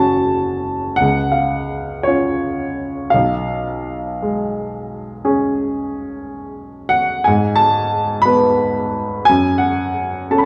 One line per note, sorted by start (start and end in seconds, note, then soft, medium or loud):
0.00 0.95 F#1 soft
0.00 0.95 C#4 soft
0.00 0.96 F#4 soft
0.00 0.96 F#5 medium
0.00 1.00 G#5 medium
0.00 0.97 A5 medium
0.96 3.10 C#2 medium
0.96 1.33 F#5 medium
1.32 2.05 F5 medium
2.03 3.10 C#4 soft
2.03 3.10 F4 soft
2.03 3.12 C#5 medium
3.10 7.24 B1 medium
3.10 6.93 F5 medium
4.22 5.87 G#3 soft
5.25 7.24 C#4 soft
5.25 7.24 G#4 medium
6.89 7.25 F#5 medium
7.24 9.24 G#2 medium
7.24 7.58 G#5 medium
7.56 8.23 A5 medium
8.22 9.25 B3 soft
8.22 9.24 B4 soft
8.22 9.27 B5 medium
9.25 10.45 F#2 medium
9.25 9.60 G#5 loud
9.58 10.30 F#5 medium
10.31 10.45 C#4 soft
10.31 10.45 A4 soft
10.31 10.38 A5 medium
10.38 10.45 B5 medium